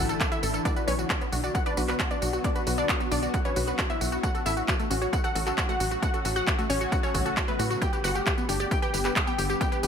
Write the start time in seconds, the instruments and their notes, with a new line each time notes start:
Already playing: ambient pad D3 E3 A3 E4
0.00 analog synth bass A1
0.09 synth pluck A4, closed hi-hat, tambourine
0.20 synth pluck A4, kick, clap, closed hi-hat, tambourine
0.32 synth pluck E4 E5, closed hi-hat, tambourine
0.43 analog synth bass A1, synth pluck A4, open hi-hat, tambourine
0.54 synth pluck A4, closed hi-hat, tambourine
0.65 ambient pad F#3 B3 F#4, synth arpeggio sound B3, synth pluck D4 D5, kick, closed hi-hat, tambourine
0.76 synth pluck F#4, synth arpeggio sound B4, closed hi-hat, tambourine
0.87 analog synth bass B1, synth pluck C#4 C#5, synth arpeggio sound B4, open hi-hat, tambourine
0.99 synth pluck F#4, closed hi-hat, tambourine
1.10 synth pluck F#4, synth arpeggio sound F#4, kick, clap, closed hi-hat, tambourine
1.21 synth arpeggio sound B3, closed hi-hat, tambourine
1.32 analog synth bass B1, synth arpeggio sound D4, synth pluck F#4, open hi-hat, tambourine
1.44 synth pluck F#4, synth arpeggio sound D5, closed hi-hat, tambourine
1.55 synth pluck F#4, synth arpeggio sound F#5, kick, closed hi-hat, tambourine
1.66 synth pluck D4 D5, synth arpeggio sound B4, closed hi-hat, tambourine
1.77 analog synth bass B1, synth pluck F#4, synth arpeggio sound B4, open hi-hat, tambourine
1.88 synth pluck F#4, synth arpeggio sound B4, clap, closed hi-hat, tambourine
1.99 synth arpeggio sound F#4, synth pluck F#4, kick, clap, closed hi-hat, tambourine
2.11 synth arpeggio sound B3, synth pluck D4 D5, closed hi-hat, tambourine
2.22 analog synth bass B1, synth arpeggio sound F#4, synth pluck F#4, open hi-hat, tambourine
2.33 synth arpeggio sound F#4, synth pluck F#4, closed hi-hat, tambourine
2.44 synth arpeggio sound B3, synth pluck D4 D5, kick, closed hi-hat, tambourine
2.55 synth pluck F#4, synth arpeggio sound B4, closed hi-hat, tambourine
2.67 analog synth bass B1, synth pluck F#4, synth arpeggio sound B4, open hi-hat, tambourine
2.78 synth pluck D4 D5, closed hi-hat, tambourine
2.89 synth arpeggio sound F#4, kick, clap, closed hi-hat, tambourine
3.00 synth arpeggio sound B3, synth pluck F#4, closed hi-hat, tambourine
3.11 analog synth bass B1, synth arpeggio sound D4, synth pluck D4 D5, open hi-hat, tambourine
3.23 synth pluck F#4, synth arpeggio sound D5, tambourine
3.34 synth pluck F#4, synth arpeggio sound F#5, kick, closed hi-hat, tambourine
3.45 synth pluck C#4 C#5, synth arpeggio sound B4, closed hi-hat, tambourine
3.56 analog synth bass B1, synth pluck F#4, synth arpeggio sound B4, open hi-hat, tambourine
3.67 synth pluck F#4, synth arpeggio sound B4, closed hi-hat, tambourine
3.79 synth arpeggio sound F#4, synth pluck F#4, kick, clap, closed hi-hat, tambourine
3.90 synth arpeggio sound B3, synth pluck E4 E5, closed hi-hat, tambourine
4.01 analog synth bass B1, synth arpeggio sound F#4, synth pluck F#4, open hi-hat, tambourine
4.12 synth arpeggio sound F#4, synth pluck F#4, closed hi-hat, tambourine
4.23 ambient pad C#3 F#3 A3 F#4, synth arpeggio sound A3, synth pluck F#4 F#5, kick, closed hi-hat, tambourine
4.34 synth pluck F#4, synth arpeggio sound A4, closed hi-hat, tambourine
4.46 analog synth bass A1, synth pluck E4 E5, synth arpeggio sound A4, open hi-hat, tambourine
4.57 synth pluck F#4, closed hi-hat, tambourine
4.68 synth pluck F#4, synth arpeggio sound F#4, kick, clap, closed hi-hat, tambourine
4.79 synth arpeggio sound A3, closed hi-hat, tambourine
4.90 analog synth bass A1, synth arpeggio sound C#4, synth pluck F#4, open hi-hat, tambourine
5.02 synth pluck F#4, synth arpeggio sound C#5, closed hi-hat, tambourine
5.13 synth pluck F#4, synth arpeggio sound F#5, kick, closed hi-hat, tambourine
5.24 synth pluck F#4 F#5, synth arpeggio sound A4, closed hi-hat, tambourine
5.35 analog synth bass A1, synth pluck F#4, synth arpeggio sound A4, open hi-hat, tambourine
5.46 synth pluck F#4, synth arpeggio sound A4, clap, closed hi-hat, tambourine
5.58 synth arpeggio sound F#4, synth pluck F#4, kick, clap, closed hi-hat, tambourine
5.69 synth arpeggio sound A3, synth pluck F#4 F#5, closed hi-hat, tambourine
5.80 analog synth bass A1, synth arpeggio sound F#4, synth pluck F#4, open hi-hat, tambourine
5.91 synth arpeggio sound F#4, synth pluck F#4, closed hi-hat, tambourine
6.02 synth arpeggio sound A3, synth pluck F#4 F#5, kick, closed hi-hat, tambourine
6.14 synth pluck F#4, synth arpeggio sound A4, closed hi-hat, tambourine
6.25 analog synth bass A1, synth pluck F#4, synth arpeggio sound A4, open hi-hat, tambourine
6.36 synth pluck F#4 F#5, closed hi-hat, tambourine
6.47 synth pluck F#4, synth arpeggio sound F#4, kick, clap, closed hi-hat, tambourine
6.58 synth arpeggio sound A3, synth pluck F#4, closed hi-hat, tambourine
6.70 analog synth bass A1, synth pluck C#4 C#5, synth arpeggio sound C#4, open hi-hat, tambourine
6.81 synth pluck F#4, synth arpeggio sound C#5, closed hi-hat, tambourine
6.92 synth pluck F#4, synth arpeggio sound F#5, kick, closed hi-hat, tambourine
7.03 synth pluck C#4 C#5, synth arpeggio sound A4, closed hi-hat, tambourine
7.14 analog synth bass A1, synth pluck F#4, synth arpeggio sound A4, kick, open hi-hat, tambourine
7.26 synth pluck F#4, synth arpeggio sound A4, closed hi-hat, tambourine
7.37 synth pluck F#4, synth arpeggio sound F#4, kick, clap, closed hi-hat, tambourine
7.48 synth arpeggio sound A3, synth pluck B3 B4, closed hi-hat, tambourine
7.59 analog synth bass A2, synth pluck F#4, synth arpeggio sound F#4, open hi-hat, tambourine
7.70 synth arpeggio sound F#4, synth pluck F#4, closed hi-hat, tambourine
7.81 ambient pad D3 G3 B3 G4, synth arpeggio sound B3, synth pluck G4 G5, kick, closed hi-hat, tambourine
7.93 synth pluck G4, synth arpeggio sound B4, closed hi-hat, tambourine
8.04 analog synth bass G1, synth pluck F#4 F#5, synth arpeggio sound B4, open hi-hat, tambourine
8.15 synth pluck G4, closed hi-hat, tambourine
8.26 synth arpeggio sound G4, synth pluck G4, kick, clap, closed hi-hat, tambourine
8.38 synth arpeggio sound B3, closed hi-hat, tambourine
8.49 analog synth bass G1, synth arpeggio sound D4, synth pluck G4, open hi-hat, tambourine
8.60 synth pluck G4, synth arpeggio sound D5, closed hi-hat, tambourine
8.71 synth pluck G4, synth arpeggio sound G5, kick, closed hi-hat, tambourine
8.82 synth pluck G4 G5, synth arpeggio sound B4, closed hi-hat, tambourine
8.94 analog synth bass G1, synth pluck G4, synth arpeggio sound B4, open hi-hat, tambourine
9.05 synth pluck G4, synth arpeggio sound B4, clap, closed hi-hat, tambourine
9.16 synth pluck G4, synth arpeggio sound G4, kick, clap, closed hi-hat, tambourine
9.27 synth arpeggio sound B3, synth pluck G4 G5, closed hi-hat, tambourine
9.38 analog synth bass G1, synth arpeggio sound G4, synth pluck G4, open hi-hat, tambourine
9.50 synth arpeggio sound G4, synth pluck G4, tambourine
9.61 synth arpeggio sound B3, synth pluck G4 G5, kick, closed hi-hat, tambourine
9.72 synth pluck G4, synth arpeggio sound B4, closed hi-hat, tambourine
9.83 analog synth bass G1, synth pluck G4, synth arpeggio sound B4, open hi-hat, tambourine